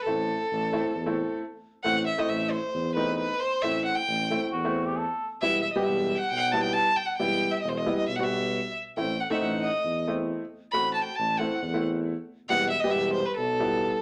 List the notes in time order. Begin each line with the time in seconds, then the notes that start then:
0.03 A1 A3 C4 A4
0.07 E4
0.52 A1
0.72 A3 C4 E4
0.95 E2
1.06 A3 C4 E4
1.84 A1 A3 C4 E4 F#5
2.07 E5
2.18 A3 C4 E4 D#5
2.29 A1 E5
2.51 C5
2.74 E2
2.95 A3 C4 D#4 B4
3.18 B4
3.40 C5
3.62 A1 A3 C4 E4 E5
3.85 F#5
3.95 G5
4.08 A1
4.31 A3 C4 E4
4.52 E2 F#4
4.64 A3 C4 E4
4.86 G4
4.98 A4
5.41 E1 G3 B3 E4 E5
5.62 E5
5.73 G3 B3 G4 D#5
5.83 E1 E5
6.15 F#5 G5
6.29 B1 G5
6.35 F#5
6.40 G5
6.52 G3 B3 E4 A5
6.63 G5
6.73 A5
6.96 G5
7.06 F#5
7.17 E1 G3 B3 E4 G5
7.51 E5
7.61 E1 D#5
7.69 C5
7.77 D#5
7.86 G3 B3 E4
7.98 D#5
8.08 B1 E5
8.16 G3 B3 F#5
8.20 F#4 E5
8.96 A1 A3 C4 E4 G5
9.20 F#5
9.30 A3 C4 D#4 E5 F#5
9.35 E5
9.41 A1 F#5
9.62 D#5
9.84 E2
10.07 A3 C4 E4
10.72 A1 A3 C4 F#4 B5
10.94 A5
11.04 G5
11.15 A1 A5
11.39 A3 C4 E4 F#5
11.62 E2
11.74 A3 C4 E4
12.49 E1 G3 B3 E4 F#5
12.70 E5
12.80 D#5
12.84 G3 B3 G4
12.90 E1 E5
13.13 C5
13.26 B4
13.36 B1 A4
13.60 G3 B3 E4